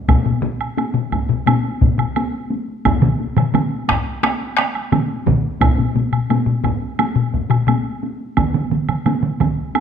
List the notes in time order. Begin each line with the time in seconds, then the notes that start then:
0.08 taiko, taiko low-mid, taiko high, high woodblock
0.26 taiko low-mid, taiko high
0.43 taiko low-mid, taiko high
0.61 taiko high, high woodblock
0.77 taiko high, high woodblock
0.94 taiko low-mid, taiko high
1.12 taiko, taiko high, high woodblock
1.29 taiko low-mid, taiko high
1.46 taiko low-mid, taiko high, high woodblock
1.65 taiko high
1.81 taiko, taiko low-mid, taiko high
1.99 taiko low-mid, taiko high, high woodblock
2.16 taiko high, high woodblock
2.34 taiko high
2.50 taiko high
2.68 taiko high
2.85 taiko, taiko high, high woodblock
3.02 taiko low-mid, taiko mid, taiko high
3.20 taiko high
3.37 taiko low-mid, taiko mid, high woodblock
3.54 taiko low-mid, taiko mid, taiko high, high woodblock
3.71 taiko high
3.88 taiko rim, taiko, taiko high, high woodblock
4.05 taiko high
4.23 taiko rim, taiko high, high woodblock
4.41 taiko high
4.57 taiko rim, taiko high
4.75 taiko high, high woodblock
4.92 taiko low-mid, taiko mid, taiko high, high woodblock
5.10 taiko high
5.26 taiko, taiko low-mid, taiko mid, taiko high
5.44 taiko high
5.61 taiko, taiko low-mid, taiko high, high woodblock
5.78 taiko low-mid, taiko high
5.95 taiko low-mid, taiko high
6.12 taiko low-mid, taiko high, high woodblock
6.30 taiko low-mid, taiko high, high woodblock
6.47 taiko low-mid, taiko high
6.64 taiko, taiko low-mid, taiko high, high woodblock
6.82 taiko high
6.99 taiko high, high woodblock
7.16 taiko low-mid, taiko high
7.34 taiko, taiko high
7.50 taiko low-mid, taiko high, high woodblock
7.68 taiko low-mid, taiko high, high woodblock
7.86 taiko high
8.03 taiko high
8.20 taiko high
8.37 taiko, taiko mid, taiko high, high woodblock
8.54 taiko mid, taiko high
8.71 taiko mid, taiko high
8.89 taiko mid, taiko high, high woodblock
9.06 taiko mid, taiko high, high woodblock
9.23 taiko mid, taiko high
9.40 taiko, taiko mid, taiko high, high woodblock
9.58 taiko high
9.75 taiko high, high woodblock